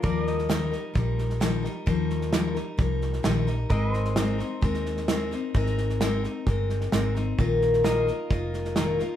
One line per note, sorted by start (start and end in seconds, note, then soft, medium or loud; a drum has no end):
0.02 0.74 D#2 medium
0.02 0.48 D#3 medium
0.02 0.48 F3 medium
0.02 0.48 G3 medium
0.02 0.50 D#4 medium
0.02 3.67 A#4 medium
0.02 0.50 A#4 medium
0.02 0.25 D5 medium
0.02 kick loud
0.02 snare soft
0.25 3.68 D#5 medium
0.25 snare soft
0.39 snare soft
0.49 0.72 D#3 medium
0.49 0.72 F3 medium
0.49 0.72 G3 medium
0.49 0.72 D#4 medium
0.49 0.70 A#4 medium
0.49 snare loud
0.49 hi-hat pedal medium
0.71 0.94 G3 soft
0.71 0.95 D#4 soft
0.71 0.95 A#4 medium
0.71 snare soft
0.94 1.66 A#1 medium
0.94 1.39 F3 medium
0.94 1.40 G3 medium
0.94 1.41 D#4 medium
0.94 1.42 A#4 medium
0.94 kick medium
0.94 snare soft
1.18 snare soft
1.30 snare soft
1.40 1.64 D#3 medium
1.40 1.64 F3 medium
1.40 1.64 G3 medium
1.40 1.64 D#4 medium
1.40 1.61 A#4 medium
1.40 snare loud
1.40 hi-hat pedal medium
1.63 1.86 G3 soft
1.63 1.86 D#4 medium
1.63 1.86 A#4 medium
1.63 snare soft
1.86 2.57 D#2 medium
1.86 2.31 D#3 medium
1.86 2.32 F3 medium
1.86 2.32 G3 medium
1.86 2.34 D#4 medium
1.86 2.34 A#4 medium
1.86 kick loud
1.86 snare soft
2.10 snare soft
2.21 snare soft
2.32 2.56 D#3 medium
2.32 2.56 F3 medium
2.32 2.56 G3 medium
2.32 2.55 D#4 medium
2.32 2.54 A#4 medium
2.32 snare loud
2.32 hi-hat pedal medium
2.55 2.78 G3 soft
2.55 2.79 D#4 soft
2.55 2.78 A#4 soft
2.55 snare soft
2.77 3.18 C2 medium
2.77 3.22 F3 medium
2.77 3.23 G3 medium
2.77 3.24 D#4 medium
2.77 3.25 A#4 medium
2.77 kick loud
2.77 snare soft
3.02 snare soft
3.13 snare soft
3.23 3.64 A#1 medium
3.23 3.47 D#3 medium
3.23 3.47 F3 medium
3.23 3.47 G3 medium
3.23 3.47 D#4 medium
3.23 3.46 A#4 medium
3.23 snare loud
3.23 hi-hat pedal medium
3.47 3.70 G3 soft
3.47 3.70 D#4 medium
3.47 3.70 A#4 medium
3.47 snare soft
3.69 4.41 G#1 medium
3.69 4.15 G#3 medium
3.69 4.15 C4 medium
3.69 4.17 D#4 medium
3.69 3.95 A#4 medium
3.69 4.18 A#4 medium
3.69 7.35 D#5 medium
3.69 kick loud
3.69 snare soft
3.93 7.34 C5 medium
3.93 snare soft
4.05 snare soft
4.16 4.39 G#3 medium
4.16 4.40 C4 medium
4.16 4.39 D#4 medium
4.16 4.37 A#4 medium
4.16 snare loud
4.16 hi-hat pedal medium
4.38 4.61 C4 soft
4.38 4.62 D#4 medium
4.38 4.62 A#4 medium
4.38 snare soft
4.61 5.33 D#2 medium
4.61 5.07 G#3 medium
4.61 5.08 C4 medium
4.61 5.09 D#4 medium
4.61 5.10 A#4 medium
4.61 kick loud
4.61 snare soft
4.74 snare soft
4.86 snare soft
4.97 snare soft
5.08 5.31 G#3 medium
5.08 5.32 C4 medium
5.08 5.32 D#4 medium
5.08 5.30 A#4 medium
5.08 snare loud
5.08 hi-hat pedal medium
5.31 5.54 C4 medium
5.31 5.55 D#4 medium
5.31 5.54 A#4 medium
5.31 snare soft
5.54 6.25 G#1 medium
5.54 6.00 G#3 medium
5.54 6.01 C4 medium
5.54 6.02 D#4 medium
5.54 6.02 A#4 loud
5.54 kick loud
5.54 snare soft
5.66 snare soft
5.78 snare soft
5.89 snare soft
6.01 6.24 G#3 medium
6.01 6.24 C4 medium
6.01 6.24 D#4 medium
6.01 6.23 A#4 medium
6.01 snare loud
6.01 hi-hat pedal medium
6.24 6.47 C4 soft
6.24 6.48 D#4 soft
6.24 6.47 A#4 medium
6.24 snare soft
6.46 6.86 G1 medium
6.46 6.91 G#3 medium
6.46 6.92 C4 medium
6.46 6.93 D#4 medium
6.46 6.94 A#4 medium
6.46 kick medium
6.46 snare soft
6.70 snare soft
6.81 snare soft
6.92 7.32 G#1 medium
6.92 7.15 G#3 medium
6.92 7.16 C4 medium
6.92 7.16 D#4 medium
6.92 7.14 A#4 medium
6.92 snare loud
6.92 hi-hat pedal medium
7.15 7.39 C4 soft
7.15 7.38 D#4 medium
7.15 7.38 A#4 medium
7.15 snare soft
7.38 8.09 A#1 medium
7.38 7.82 A#2 medium
7.38 7.83 D#3 medium
7.38 7.84 A#3 medium
7.38 7.85 D#4 medium
7.38 7.85 F4 medium
7.38 7.85 A#4 medium
7.38 kick medium
7.38 snare soft
7.62 snare soft
7.73 snare soft
7.84 8.07 A#2 medium
7.84 8.07 D#3 medium
7.84 8.08 A#3 medium
7.84 8.08 D#4 medium
7.84 8.07 F4 medium
7.84 9.16 A#4 medium
7.84 8.06 A#4 medium
7.84 9.16 D#5 medium
7.84 snare loud
7.84 hi-hat pedal medium
8.07 8.29 A#3 soft
8.07 8.30 D#4 soft
8.07 8.31 F4 soft
8.07 8.30 A#4 medium
8.07 snare soft
8.30 9.01 F1 medium
8.30 8.77 A#3 medium
8.30 8.77 D#4 medium
8.30 8.77 F4 medium
8.30 8.78 A#4 medium
8.30 kick loud
8.30 snare soft
8.54 snare soft
8.65 snare soft
8.76 8.99 A#2 medium
8.76 8.99 D#3 medium
8.76 9.00 A#3 medium
8.76 9.00 D#4 medium
8.76 8.99 F4 medium
8.76 8.98 A#4 medium
8.76 snare loud
8.76 hi-hat pedal medium
8.99 9.16 A#3 medium
8.99 9.16 D#4 soft
8.99 9.16 F4 medium
8.99 9.16 A#4 medium
8.99 snare soft